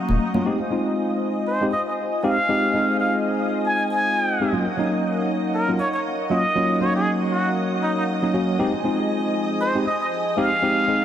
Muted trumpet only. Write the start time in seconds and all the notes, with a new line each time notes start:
1.47 C5
1.73 D#5
1.87 D#5
2.24 F5
3.00 F5
3.65 G#5
3.91 G#5
5.54 A#4
5.80 C#5
5.94 C#5
6.31 D#5
6.81 C#5
6.96 G#4
7.32 F#4
7.83 D#4
7.97 D#4
9.61 C5
9.87 D#5
10.01 D#5
10.37 F5